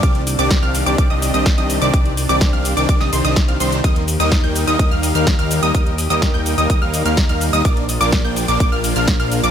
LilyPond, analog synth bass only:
\new Staff \with { instrumentName = "Analog synth bass" } { \clef bass \time 4/4 \key c \dorian \tempo 4 = 126 c,8. c,8 c,8 c,16 c,16 c,8 c,8 c,8 c,16 | c,8. c,8 c,8 c,16 c,16 c,16 c,16 c,8 c,16 c,8 | ees,8. ees,8 ees,8 ees,16 ees,16 ees,8 ees,8 ees,8 ees,16 | ees,8. ees,8 ees,8 ees,16 ees,16 ees,8 ees,8 ees,8 ees,16 |
bes,,8. bes,,8 bes,,8 bes,,16 bes,,16 bes,,8 bes,,8 bes,,8 bes,,16 | }